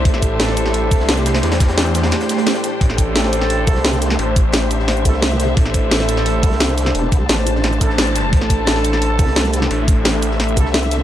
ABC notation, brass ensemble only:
X:1
M:4/4
L:1/16
Q:1/4=174
K:Am
V:1 name="Brass ensemble"
[A,EA]12- [A,EA]2 [A,EA]2 | [A,EA] z12 z3 | [A,EA]12- [A,EA]2 [A,EA]2 | [A,EA] z8 z [A,EA] z4 z |
[A,EA]12- [A,EA]2 [A,EA]2 | [A,EA] z8 z [A,EA] z4 z | [A,EA]12- [A,EA]2 [A,EA]2 | [A,EA] z8 z [A,EA] z4 z |]